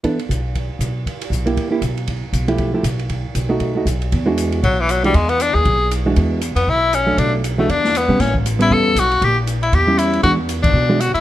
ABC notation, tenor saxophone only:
X:1
M:4/4
L:1/8
Q:"Swing" 1/4=236
K:Bdor
V:1 name="Tenor saxophone"
z8 | z8 | z8 | z8 |
z4 F, E, F, =G, | G, B, D G3 z2 | z3 B, E2 C2 | D z2 A, D2 B,2 |
C z2 E A2 F2 | =G z2 E G2 E2 | F z2 D3 F E |]